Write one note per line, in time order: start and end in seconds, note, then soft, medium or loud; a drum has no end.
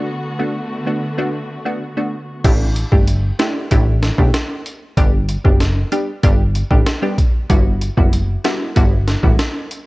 0.00 2.42 D3 medium
0.00 0.10 A3 medium
0.00 2.42 A3 medium
0.00 0.11 B3 medium
0.00 2.41 B3 medium
0.00 0.11 D4 medium
0.00 0.11 F#4 loud
0.00 2.41 F#4 medium
0.39 0.58 A3 medium
0.39 0.58 B3 medium
0.39 0.58 D4 medium
0.39 0.58 F#4 medium
0.86 1.05 A3 medium
0.86 1.05 B3 medium
0.86 1.05 D4 medium
0.86 1.05 F#4 medium
1.18 1.37 A3 medium
1.18 1.37 B3 medium
1.18 1.37 D4 medium
1.18 1.37 F#4 loud
1.65 1.84 A3 medium
1.65 1.84 B3 medium
1.65 1.84 D4 medium
1.65 1.84 F#4 medium
1.97 2.16 A3 medium
1.97 2.16 B3 medium
1.97 2.16 D4 medium
1.97 2.16 F#4 medium
2.44 2.84 A1 loud
2.44 2.88 A3 medium
2.44 2.88 D4 medium
2.44 2.88 E4 medium
2.44 2.88 G4 loud
2.44 kick loud
2.44 closed hi-hat medium
2.44 crash loud
2.76 closed hi-hat medium
2.92 3.32 G1 medium
2.92 3.35 A3 medium
2.92 3.36 D4 medium
2.92 3.36 E4 medium
2.92 3.36 G4 medium
2.92 kick medium
3.08 closed hi-hat medium
3.39 3.68 A3 medium
3.39 3.68 D4 medium
3.39 3.68 E4 medium
3.39 3.69 G4 medium
3.39 snare loud
3.39 closed hi-hat medium
3.71 4.11 A1 loud
3.71 4.14 A3 loud
3.71 4.14 D4 medium
3.71 4.15 E4 medium
3.71 4.15 G4 loud
3.71 kick loud
3.71 closed hi-hat medium
4.02 snare medium
4.02 closed hi-hat medium
4.18 4.31 B1 medium
4.18 4.37 A3 medium
4.18 4.37 D4 medium
4.18 4.37 E4 medium
4.18 4.37 G4 medium
4.18 kick loud
4.34 snare loud
4.34 closed hi-hat medium
4.66 closed hi-hat medium
4.97 5.37 G1 loud
4.97 5.16 G3 medium
4.97 5.16 B3 medium
4.97 5.16 D4 medium
4.97 5.16 G4 loud
4.97 kick loud
4.97 closed hi-hat medium
5.29 closed hi-hat medium
5.44 5.85 F#1 medium
5.44 5.63 G3 medium
5.44 5.63 B3 medium
5.44 5.63 D4 medium
5.44 5.63 G4 medium
5.44 kick loud
5.60 snare medium
5.60 closed hi-hat medium
5.92 6.10 G3 medium
5.92 6.11 B3 medium
5.92 6.11 D4 medium
5.92 6.11 G4 medium
5.92 closed hi-hat medium
6.23 6.63 G1 loud
6.23 6.42 G3 loud
6.23 6.42 B3 medium
6.23 6.42 D4 medium
6.23 6.42 G4 loud
6.23 kick loud
6.23 closed hi-hat medium
6.55 closed hi-hat medium
6.71 6.84 A1 medium
6.71 6.89 G3 medium
6.71 6.89 B3 medium
6.71 6.90 D4 medium
6.71 6.90 G4 medium
6.71 kick loud
6.87 snare loud
6.87 closed hi-hat medium
7.02 7.21 G3 medium
7.02 7.21 B3 medium
7.02 7.21 D4 medium
7.02 7.21 G4 medium
7.18 kick loud
7.18 closed hi-hat medium
7.49 7.90 G1 loud
7.49 7.93 G3 medium
7.49 7.93 B3 medium
7.49 7.93 E4 medium
7.49 7.94 F#4 loud
7.49 kick loud
7.49 closed hi-hat medium
7.81 closed hi-hat medium
7.97 8.37 F#1 medium
7.97 8.41 G3 medium
7.97 8.41 B3 medium
7.97 8.41 E4 medium
7.97 8.41 F#4 medium
7.97 kick loud
8.13 closed hi-hat medium
8.44 8.73 G3 medium
8.44 8.74 B3 medium
8.44 8.74 E4 medium
8.44 8.74 F#4 medium
8.44 snare loud
8.44 closed hi-hat medium
8.76 9.16 G1 loud
8.76 9.20 G3 medium
8.76 9.20 B3 medium
8.76 9.20 E4 medium
8.76 9.20 F#4 loud
8.76 kick loud
8.76 closed hi-hat medium
9.08 snare medium
9.08 closed hi-hat medium
9.23 9.37 A1 medium
9.23 9.42 G3 medium
9.23 9.42 B3 medium
9.23 9.42 E4 medium
9.23 9.42 F#4 medium
9.23 kick loud
9.39 snare loud
9.39 closed hi-hat medium
9.71 closed hi-hat medium